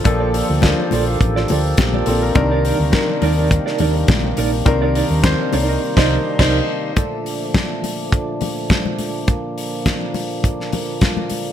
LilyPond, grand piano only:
\new Staff \with { instrumentName = "Grand piano" } { \time 4/4 \key bes \major \tempo 4 = 104 << { r2. <bes g'>8 <c' a'>16 <d' bes'>16~ | <d' bes'>16 r2. r8. | r1 | r1 |
r1 | } \\ { <f bes d' a'>8. r16 <f bes d' a'>4. r4. | <ees c' d' bes'>8. r16 <ees c' d' bes'>4. r4. | <ees c' d' bes'>8. r16 <ees c' d' c''>4 r16 <ees' c''>8 r16 <ees' c''>8 r8 | r1 |
r1 | } >> }